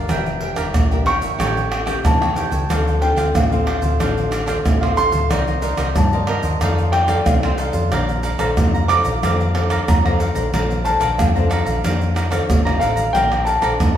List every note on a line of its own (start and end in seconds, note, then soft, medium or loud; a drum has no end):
0.00 0.38 D5 medium
0.09 0.51 E1 loud
0.09 0.71 E3 medium
0.09 0.40 D4 medium
0.09 0.28 D4 medium
0.09 0.29 G4 medium
0.09 0.41 A#4 medium
0.09 0.29 A#4 medium
0.09 0.41 E5 medium
0.09 0.41 G5 medium
0.09 pandeiro medium
0.09 tamborim medium
0.09 shaker medium
0.09 surdo medium
0.26 pandeiro soft
0.26 shaker soft
0.41 0.72 D4 medium
0.41 0.55 D4 medium
0.41 0.72 G4 medium
0.41 0.72 A#4 medium
0.41 0.56 A#4 medium
0.41 0.56 E5 medium
0.41 0.56 G5 medium
0.41 pandeiro medium
0.56 0.71 E1 medium
0.56 0.66 D4 medium
0.56 0.66 A#4 medium
0.56 0.67 E5 medium
0.56 0.67 G5 medium
0.56 pandeiro medium
0.56 tamborim medium
0.56 shaker medium
0.56 surdo soft
0.74 1.16 A#1 medium
0.74 1.36 E3 medium
0.74 pandeiro medium
0.74 tamborim medium
0.74 shaker medium
0.74 surdo loud
0.91 1.35 D4 medium
0.91 1.35 G4 medium
0.91 1.35 A#4 medium
0.91 1.05 A#4 soft
0.91 1.06 E5 soft
0.91 1.06 G5 soft
0.91 pandeiro soft
0.91 shaker soft
0.91 surdo soft
1.05 1.21 D4 medium
1.05 1.22 A#4 medium
1.05 1.21 E5 medium
1.05 1.20 G5 medium
1.05 2.01 C#6 loud
1.05 pandeiro medium
1.05 tamborim medium
1.21 1.36 G#1 medium
1.21 1.38 A#4 soft
1.21 1.38 E5 soft
1.21 1.37 G5 soft
1.21 pandeiro medium
1.21 shaker medium
1.21 surdo soft
1.39 1.95 A1 loud
1.39 2.01 A3 medium
1.39 1.83 C#4 medium
1.39 1.69 G4 medium
1.39 1.84 G4 medium
1.39 1.70 A4 medium
1.39 1.84 A#4 medium
1.39 1.71 C#5 medium
1.39 1.72 G5 medium
1.39 pandeiro medium
1.39 tamborim medium
1.39 shaker medium
1.39 surdo medium
1.57 pandeiro soft
1.57 shaker soft
1.70 1.84 G4 soft
1.70 1.85 A4 soft
1.70 1.86 C#5 medium
1.70 1.86 G5 soft
1.70 pandeiro medium
1.70 tamborim medium
1.86 2.31 C#4 medium
1.86 1.96 G4 medium
1.86 2.31 G4 medium
1.86 1.96 A4 medium
1.86 2.32 A#4 medium
1.86 1.97 C#5 medium
1.86 1.97 G5 medium
1.86 pandeiro medium
1.86 tamborim medium
1.86 shaker medium
1.86 surdo soft
2.05 2.46 E2 medium
2.05 2.67 E3 medium
2.05 2.99 A5 medium
2.05 pandeiro medium
2.05 tamborim medium
2.05 shaker medium
2.05 surdo loud
2.21 2.35 A4 medium
2.21 2.36 C#5 medium
2.21 2.36 G5 medium
2.21 pandeiro soft
2.21 tamborim medium
2.21 shaker soft
2.35 2.64 C#4 medium
2.35 2.51 G4 soft
2.35 2.65 G4 medium
2.35 2.52 A4 soft
2.35 2.65 A#4 medium
2.35 2.51 C#5 soft
2.35 2.50 G5 medium
2.35 pandeiro medium
2.35 shaker medium
2.51 2.66 C#2 medium
2.51 2.68 A4 soft
2.51 2.68 C#5 soft
2.51 2.67 G5 soft
2.51 pandeiro medium
2.51 shaker medium
2.69 3.12 D2 loud
2.69 3.32 D3 medium
2.69 2.89 C4 medium
2.69 3.00 D4 medium
2.69 2.89 F4 medium
2.69 3.01 A4 medium
2.69 2.89 A4 medium
2.69 3.02 C5 medium
2.69 3.02 F5 medium
2.69 pandeiro medium
2.69 tamborim medium
2.69 shaker medium
2.69 surdo medium
2.87 pandeiro soft
2.87 shaker soft
3.01 3.33 C4 medium
3.01 3.15 D4 soft
3.01 3.33 F4 medium
3.01 3.16 A4 soft
3.01 3.33 A4 medium
3.01 3.16 C5 medium
3.01 3.17 F5 medium
3.01 3.34 G5 medium
3.01 pandeiro medium
3.16 3.31 D2 medium
3.16 3.27 D4 medium
3.16 3.27 A4 medium
3.16 3.27 C5 medium
3.16 3.27 F5 medium
3.16 pandeiro medium
3.16 tamborim medium
3.16 shaker medium
3.16 surdo soft
3.35 3.77 A1 medium
3.35 3.97 A3 medium
3.35 4.29 F5 medium
3.35 pandeiro medium
3.35 tamborim medium
3.35 shaker medium
3.35 surdo loud
3.52 3.95 C4 medium
3.52 3.96 F4 medium
3.52 3.96 A4 medium
3.52 3.66 A4 soft
3.52 3.66 C5 soft
3.52 3.67 F5 soft
3.52 pandeiro soft
3.52 shaker soft
3.52 surdo soft
3.66 3.82 D4 medium
3.66 3.82 A4 medium
3.66 3.81 C5 medium
3.66 3.80 F5 medium
3.66 pandeiro medium
3.66 tamborim medium
3.81 3.97 D2 medium
3.81 3.99 A4 soft
3.81 3.98 C5 soft
3.81 3.98 F5 soft
3.81 pandeiro medium
3.81 shaker medium
3.81 surdo soft
4.00 4.56 A1 loud
4.00 4.62 D3 medium
4.00 4.31 C4 medium
4.00 4.29 D4 medium
4.00 4.31 F4 medium
4.00 4.30 A4 medium
4.00 4.31 A4 medium
4.00 4.31 C5 medium
4.00 4.32 F5 medium
4.00 pandeiro medium
4.00 tamborim medium
4.00 shaker medium
4.00 surdo medium
4.17 pandeiro soft
4.17 shaker soft
4.31 4.45 D4 soft
4.31 4.46 A4 soft
4.31 4.46 C5 medium
4.31 4.46 F5 soft
4.31 pandeiro medium
4.31 tamborim medium
4.31 shaker medium
4.46 4.92 C4 medium
4.46 4.57 D4 medium
4.46 4.92 F4 medium
4.46 4.57 A4 medium
4.46 4.93 A4 medium
4.46 4.57 C5 medium
4.46 4.57 F5 medium
4.46 pandeiro medium
4.46 tamborim medium
4.46 shaker medium
4.46 surdo soft
4.65 5.07 A1 medium
4.65 5.27 A3 medium
4.65 pandeiro medium
4.65 tamborim medium
4.65 shaker medium
4.65 surdo loud
4.81 4.95 A4 medium
4.81 4.96 C5 medium
4.81 4.96 F5 medium
4.81 pandeiro soft
4.81 tamborim medium
4.81 shaker soft
4.96 5.16 C4 medium
4.96 5.12 D4 soft
4.96 5.17 F4 medium
4.96 5.12 A4 soft
4.96 5.17 A4 medium
4.96 5.12 C5 medium
4.96 5.10 F5 medium
4.96 5.92 C6 loud
4.96 pandeiro medium
4.96 shaker medium
5.11 5.27 D2 medium
5.11 5.29 A4 soft
5.11 5.29 C5 soft
5.11 5.28 F5 soft
5.11 pandeiro medium
5.11 shaker medium
5.30 5.72 C2 loud
5.30 5.93 C4 medium
5.30 5.61 D#4 medium
5.30 5.58 D#4 medium
5.30 5.61 A#4 medium
5.30 5.58 A#4 medium
5.30 5.62 C5 medium
5.30 5.58 D5 medium
5.30 5.63 D#5 medium
5.30 pandeiro medium
5.30 tamborim medium
5.30 shaker medium
5.30 surdo medium
5.47 pandeiro soft
5.47 shaker soft
5.62 5.77 D#4 medium
5.62 5.93 D#4 medium
5.62 5.77 A#4 medium
5.62 5.93 A#4 medium
5.62 5.78 C5 medium
5.62 5.94 D5 medium
5.62 5.78 D#5 medium
5.62 pandeiro medium
5.62 shaker medium
5.77 5.92 C2 medium
5.77 5.88 D#4 medium
5.77 5.88 A#4 medium
5.77 5.88 C5 medium
5.77 5.88 D#5 medium
5.77 pandeiro medium
5.77 tamborim medium
5.77 shaker medium
5.77 surdo soft
5.95 6.38 G2 medium
5.95 6.58 G3 medium
5.95 6.90 A5 medium
5.95 pandeiro medium
5.95 tamborim medium
5.95 shaker medium
5.95 surdo loud
6.13 6.56 D#4 medium
6.13 6.57 A#4 medium
6.13 6.27 A#4 soft
6.13 6.28 C5 soft
6.13 6.57 D5 medium
6.13 6.28 D#5 soft
6.13 pandeiro soft
6.13 shaker soft
6.13 surdo soft
6.27 6.43 D#4 medium
6.27 6.43 A#4 medium
6.27 6.43 C5 medium
6.27 6.41 D#5 medium
6.27 pandeiro medium
6.27 tamborim medium
6.43 6.58 D#2 medium
6.43 6.60 A#4 soft
6.43 6.59 C5 soft
6.43 6.59 D#5 soft
6.43 pandeiro medium
6.43 shaker medium
6.43 surdo soft
6.61 7.17 F2 loud
6.61 7.23 F3 medium
6.61 7.05 D#4 medium
6.61 6.92 D#4 medium
6.61 7.05 A4 medium
6.61 6.93 A4 medium
6.61 6.94 C5 medium
6.61 7.05 D5 medium
6.61 6.94 F5 medium
6.61 pandeiro medium
6.61 tamborim medium
6.61 shaker medium
6.61 surdo medium
6.78 pandeiro soft
6.78 shaker soft
6.92 7.07 D#4 soft
6.92 7.08 A4 medium
6.92 7.08 C5 soft
6.92 7.08 F5 medium
6.92 7.25 G5 medium
6.92 pandeiro medium
6.92 tamborim medium
7.08 7.53 D#4 medium
7.08 7.18 D#4 medium
7.08 7.53 A4 medium
7.08 7.19 A4 medium
7.08 7.19 C5 medium
7.08 7.53 D5 medium
7.08 7.19 F5 medium
7.08 pandeiro medium
7.08 tamborim medium
7.08 shaker medium
7.08 surdo soft
7.26 7.68 C2 medium
7.26 7.88 C3 medium
7.26 8.20 F5 medium
7.26 pandeiro medium
7.26 tamborim medium
7.26 shaker medium
7.26 surdo loud
7.43 7.58 A4 medium
7.43 7.59 C5 medium
7.43 7.58 F5 medium
7.43 pandeiro soft
7.43 tamborim medium
7.43 shaker soft
7.58 7.74 D#4 medium
7.58 7.86 D#4 medium
7.58 7.86 A4 medium
7.58 7.74 A4 medium
7.58 7.73 C5 medium
7.58 7.87 D5 medium
7.58 7.72 F5 medium
7.58 pandeiro medium
7.58 shaker medium
7.73 7.88 F2 medium
7.73 7.90 A4 soft
7.73 7.90 C5 soft
7.73 7.89 F5 soft
7.73 pandeiro medium
7.73 shaker medium
7.92 8.34 A#1 loud
7.92 8.54 A#3 medium
7.92 8.36 D4 medium
7.92 8.36 C5 medium
7.92 8.23 D5 medium
7.92 8.24 F5 medium
7.92 8.24 A#5 medium
7.92 pandeiro medium
7.92 tamborim medium
7.92 shaker medium
7.92 surdo medium
8.09 pandeiro soft
8.09 shaker soft
8.23 8.38 A4 medium
8.23 8.38 D5 medium
8.23 8.39 F5 medium
8.23 8.39 A#5 medium
8.23 pandeiro medium
8.23 shaker medium
8.39 8.54 A#1 medium
8.39 8.84 D4 medium
8.39 8.49 A4 medium
8.39 8.84 A4 medium
8.39 8.84 C5 medium
8.39 8.49 D5 medium
8.39 8.49 F5 medium
8.39 8.50 A#5 medium
8.39 pandeiro medium
8.39 tamborim medium
8.39 shaker medium
8.39 surdo soft
8.57 8.99 F2 medium
8.57 9.20 F3 medium
8.57 pandeiro medium
8.57 tamborim medium
8.57 shaker medium
8.57 surdo loud
8.74 8.88 D5 soft
8.74 8.89 F5 soft
8.74 8.89 A#5 medium
8.74 pandeiro soft
8.74 shaker soft
8.74 surdo soft
8.88 9.09 D4 medium
8.88 9.04 A4 medium
8.88 9.09 A4 medium
8.88 9.09 C5 medium
8.88 9.05 D5 medium
8.88 9.04 F5 medium
8.88 9.03 A#5 medium
8.88 9.83 D6 loud
8.88 pandeiro medium
8.88 tamborim medium
8.88 shaker medium
9.04 9.19 A#1 medium
9.04 9.21 D5 soft
9.04 9.21 F5 soft
9.04 9.20 A#5 soft
9.04 pandeiro medium
9.04 shaker medium
9.04 surdo soft
9.23 9.78 F2 loud
9.23 9.85 A#3 medium
9.23 9.42 D4 medium
9.23 9.42 A4 medium
9.23 9.42 C5 medium
9.23 9.54 D5 medium
9.23 9.54 F5 medium
9.23 9.55 A#5 medium
9.23 pandeiro medium
9.23 tamborim medium
9.23 shaker medium
9.23 surdo medium
9.40 pandeiro soft
9.40 shaker soft
9.54 9.85 D4 medium
9.54 9.69 A4 soft
9.54 9.86 A4 medium
9.54 9.86 C5 medium
9.54 9.69 D5 soft
9.54 9.70 F5 medium
9.54 9.70 A#5 medium
9.54 pandeiro medium
9.54 tamborim medium
9.70 9.80 A4 medium
9.70 9.80 D5 medium
9.70 9.80 F5 medium
9.70 9.81 A#5 medium
9.70 pandeiro medium
9.70 tamborim medium
9.70 shaker medium
9.70 surdo soft
9.88 10.30 F2 loud
9.88 10.50 F3 medium
9.88 10.82 A#5 medium
9.88 pandeiro medium
9.88 tamborim medium
9.88 shaker medium
9.88 surdo loud
10.05 10.32 D4 medium
10.05 10.32 A4 medium
10.05 10.33 C5 medium
10.05 10.19 D5 medium
10.05 10.20 F5 medium
10.05 10.20 A#5 medium
10.05 pandeiro soft
10.05 tamborim medium
10.05 shaker soft
10.19 10.35 A4 medium
10.19 10.36 D5 soft
10.19 10.35 F5 medium
10.19 10.34 A#5 medium
10.19 pandeiro medium
10.19 shaker medium
10.35 10.50 A#1 medium
10.35 10.47 D4 medium
10.35 10.47 A4 medium
10.35 10.48 C5 medium
10.35 10.52 D5 soft
10.35 10.52 F5 soft
10.35 10.51 A#5 soft
10.35 pandeiro medium
10.35 shaker medium
10.53 10.95 A#1 loud
10.53 11.15 A#3 medium
10.53 10.73 D4 medium
10.53 10.73 A4 medium
10.53 10.73 C5 medium
10.53 10.84 D5 medium
10.53 10.85 F5 medium
10.53 10.86 A#5 medium
10.53 pandeiro medium
10.53 tamborim medium
10.53 shaker medium
10.53 surdo medium
10.70 pandeiro soft
10.70 shaker soft
10.84 11.29 D4 medium
10.84 10.99 A4 medium
10.84 11.30 A4 medium
10.84 11.30 C5 medium
10.84 10.99 D5 medium
10.84 11.00 F5 medium
10.84 11.17 A5 medium
10.84 11.00 A#5 medium
10.84 pandeiro medium
10.84 shaker medium
11.00 11.15 A#1 medium
11.00 11.10 A4 medium
11.00 11.11 D5 medium
11.00 11.11 F5 medium
11.00 11.11 A#5 medium
11.00 pandeiro medium
11.00 tamborim medium
11.00 shaker medium
11.00 surdo soft
11.18 11.60 F2 medium
11.18 11.81 F3 medium
11.18 12.13 F5 medium
11.18 pandeiro medium
11.18 tamborim medium
11.18 shaker medium
11.18 surdo loud
11.35 11.79 D4 medium
11.35 11.79 A4 medium
11.35 11.80 C5 medium
11.35 11.49 D5 soft
11.35 11.50 F5 medium
11.35 11.50 A#5 soft
11.35 pandeiro soft
11.35 shaker soft
11.35 surdo soft
11.49 11.66 A4 medium
11.49 11.66 D5 medium
11.49 11.65 F5 medium
11.49 11.64 A#5 medium
11.49 pandeiro medium
11.49 tamborim medium
11.49 shaker medium
11.65 11.81 A#1 medium
11.65 11.83 D5 soft
11.65 11.82 F5 soft
11.65 11.82 A#5 medium
11.65 pandeiro medium
11.65 shaker medium
11.65 surdo soft
11.84 12.40 F2 loud
11.84 12.46 A#3 medium
11.84 12.15 D4 medium
11.84 12.15 C5 medium
11.84 12.14 D5 medium
11.84 12.15 F5 medium
11.84 12.16 A#5 medium
11.84 pandeiro medium
11.84 tamborim medium
11.84 shaker medium
11.84 surdo medium
12.01 pandeiro soft
12.01 shaker soft
12.14 12.29 A4 medium
12.14 12.30 D5 medium
12.14 12.30 F5 medium
12.14 12.31 A#5 soft
12.14 pandeiro medium
12.14 tamborim medium
12.14 shaker medium
12.31 12.76 D4 medium
12.31 12.41 A4 medium
12.31 12.76 A4 medium
12.31 12.76 C5 medium
12.31 12.41 D5 medium
12.31 12.41 F5 medium
12.31 12.42 A#5 medium
12.31 pandeiro medium
12.31 tamborim medium
12.31 shaker medium
12.31 surdo soft
12.49 12.79 G1 medium
12.49 13.11 F3 medium
12.49 pandeiro medium
12.49 tamborim medium
12.49 shaker medium
12.49 surdo loud
12.65 12.79 D5 medium
12.65 12.80 F5 medium
12.65 12.81 A#5 medium
12.65 pandeiro soft
12.65 tamborim medium
12.65 shaker soft
12.79 13.11 A1 medium
12.79 13.09 D4 medium
12.79 12.96 A4 medium
12.79 13.09 A4 medium
12.79 13.09 C5 medium
12.79 12.97 D5 medium
12.79 13.15 F5 medium
12.79 12.96 F5 medium
12.79 12.94 A#5 medium
12.79 pandeiro medium
12.79 shaker medium
12.79 surdo soft
12.96 13.13 D5 soft
12.96 13.13 F5 soft
12.96 13.12 A#5 soft
12.96 pandeiro medium
12.96 shaker medium
13.13 13.57 A#1 medium
13.13 13.77 A#3 medium
13.13 13.59 D4 medium
13.13 13.59 C5 medium
13.13 13.46 D5 medium
13.13 13.47 F5 medium
13.13 13.48 G5 loud
13.13 13.47 A#5 medium
13.13 pandeiro medium
13.13 tamborim medium
13.13 shaker medium
13.13 surdo medium
13.32 pandeiro soft
13.32 tamborim medium
13.32 shaker soft
13.45 13.61 A4 soft
13.45 13.61 D5 soft
13.45 13.61 F5 medium
13.45 13.97 A5 medium
13.45 13.62 A#5 medium
13.45 pandeiro medium
13.45 shaker medium
13.62 13.77 A#1 medium
13.62 13.90 D4 medium
13.62 13.72 A4 medium
13.62 13.91 A4 medium
13.62 13.91 C5 medium
13.62 13.72 D5 medium
13.62 13.72 F5 medium
13.62 13.72 A#5 medium
13.62 pandeiro medium
13.62 tamborim medium
13.62 shaker medium
13.80 13.97 F2 medium
13.80 13.97 F3 medium
13.80 pandeiro medium
13.80 tamborim medium
13.80 shaker medium
13.80 surdo loud